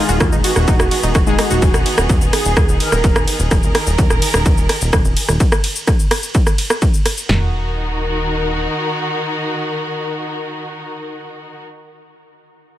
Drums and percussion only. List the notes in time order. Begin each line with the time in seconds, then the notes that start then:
0.09 shaker
0.20 kick, cross-stick, ride, shaker
0.32 shaker
0.44 open hi-hat, ride
0.56 cross-stick, shaker
0.68 kick, ride, shaker
0.80 cross-stick, shaker
0.91 open hi-hat, ride
1.03 shaker
1.15 kick, cross-stick, ride, shaker
1.27 shaker
1.39 cross-stick, open hi-hat, ride
1.50 shaker
1.62 kick, ride, shaker
1.74 cross-stick, shaker
1.86 open hi-hat, ride
1.98 cross-stick, shaker
2.09 kick, ride, shaker
2.21 shaker
2.33 cross-stick, open hi-hat, ride
2.45 shaker
2.57 kick, cross-stick, ride, shaker
2.69 shaker
2.80 open hi-hat, ride
2.92 cross-stick, shaker
3.04 kick, ride, shaker
3.16 cross-stick, shaker
3.28 open hi-hat, ride
3.39 shaker
3.51 kick, cross-stick, ride, shaker
3.63 shaker
3.75 cross-stick, open hi-hat, ride
3.87 shaker
3.98 kick, ride, shaker
4.10 cross-stick, shaker
4.22 open hi-hat, ride
4.34 cross-stick, shaker
4.46 kick, ride, shaker
4.58 shaker
4.69 cross-stick, open hi-hat, ride
4.81 shaker
4.93 kick, cross-stick, ride, shaker
5.05 shaker
5.17 open hi-hat, ride
5.29 cross-stick, shaker
5.40 kick, ride, shaker
5.52 cross-stick, shaker
5.64 open hi-hat, ride
5.76 shaker
5.87 kick, cross-stick, ride, shaker
5.99 shaker
6.11 cross-stick, open hi-hat, ride
6.23 shaker
6.35 kick, ride, shaker
6.47 cross-stick, shaker
6.58 open hi-hat, ride
6.70 cross-stick, shaker
6.82 kick, ride, shaker
6.94 shaker
7.06 cross-stick, open hi-hat, ride
7.17 shaker
7.29 snare, floor tom